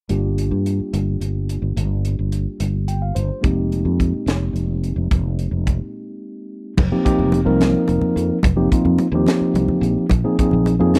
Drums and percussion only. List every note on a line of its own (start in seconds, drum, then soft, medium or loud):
0.09 closed hi-hat medium
0.38 closed hi-hat soft
0.66 closed hi-hat soft
0.94 closed hi-hat medium
1.21 closed hi-hat medium
1.49 closed hi-hat soft
1.77 closed hi-hat medium
2.05 closed hi-hat medium
2.32 closed hi-hat soft
2.60 closed hi-hat medium
2.88 closed hi-hat soft
3.16 closed hi-hat medium
3.44 kick medium
3.44 closed hi-hat medium
3.72 closed hi-hat soft
4.00 kick medium
4.00 closed hi-hat soft
4.27 snare medium
4.27 closed hi-hat medium
4.56 closed hi-hat medium
4.84 closed hi-hat soft
5.11 kick medium
5.11 closed hi-hat medium
5.39 closed hi-hat medium
5.67 kick medium
5.67 closed hi-hat soft
6.77 kick loud
6.77 crash medium
6.77 muted conga medium
6.77 high conga medium
6.77 low conga soft
7.06 kick medium
7.06 closed hi-hat medium
7.19 high conga medium
7.19 low conga medium
7.32 closed hi-hat soft
7.32 muted conga medium
7.32 low conga soft
7.60 snare medium
7.60 closed hi-hat medium
7.60 high conga medium
7.75 low conga soft
7.88 closed hi-hat medium
7.88 muted conga medium
8.01 high conga medium
8.01 low conga medium
8.17 closed hi-hat medium
8.43 kick medium
8.43 closed hi-hat medium
8.43 muted conga medium
8.43 high conga loud
8.43 low conga soft
8.72 kick medium
8.72 closed hi-hat medium
8.85 high conga medium
8.85 low conga medium
8.98 closed hi-hat medium
8.98 muted conga medium
8.98 low conga soft
9.26 snare loud
9.26 closed hi-hat medium
9.26 high conga medium
9.42 low conga soft
9.55 closed hi-hat medium
9.55 muted conga medium
9.68 high conga medium
9.68 low conga medium
9.83 closed hi-hat medium
10.09 kick medium
10.09 closed hi-hat medium
10.09 muted conga medium
10.09 high conga medium
10.09 low conga soft
10.39 kick medium
10.39 closed hi-hat medium
10.51 high conga medium
10.51 low conga medium
10.66 closed hi-hat medium
10.66 muted conga medium
10.66 low conga soft
10.94 snare loud
10.94 closed hi-hat medium
10.94 high conga medium